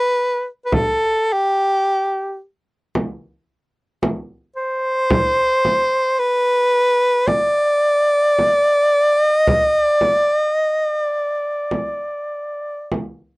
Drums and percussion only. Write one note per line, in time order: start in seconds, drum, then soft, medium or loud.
0.72 frame drum medium
2.95 frame drum medium
4.03 frame drum medium
5.10 frame drum medium
5.65 frame drum soft
7.28 frame drum soft
8.39 frame drum soft
9.47 frame drum medium
10.01 frame drum soft
11.71 frame drum soft
12.92 frame drum soft